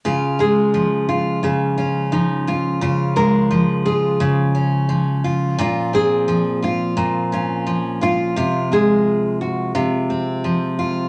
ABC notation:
X:1
M:4/4
L:1/8
Q:"Swing 16ths" 1/4=87
K:Db
V:1 name="Nylon-string guitar"
F A2 F F F E F- | F B2 A4 z | F A2 F2 F2 F- | F A2 G F3 z |]
V:2 name="Steel-string acoustic guitar" clef=bass
[D,F] A, F, F D, D F, F | [D,F] A, F, F D, D F, F | [B,,F] C F, F B,, D F, F | [C,F] A,3 C, C F, F |]